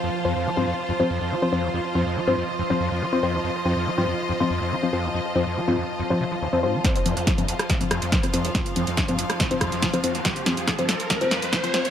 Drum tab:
HH |----------------|----------------|----------------|----------------|
SD |----------------|----------------|----------------|----------------|
BD |----------------|----------------|----------------|----------------|

HH |xxoxxxoxxxoxxxox|xxoxxxoxxxoxxxox|xxoxxxoxxxoxxxox|
SD |o---o--ro-r-o---|o---o--ro-r-o---|o-o-o-o-o-o-o-o-|
BD |o---o---o---o---|o---o---o-o-o---|o---o---o---o---|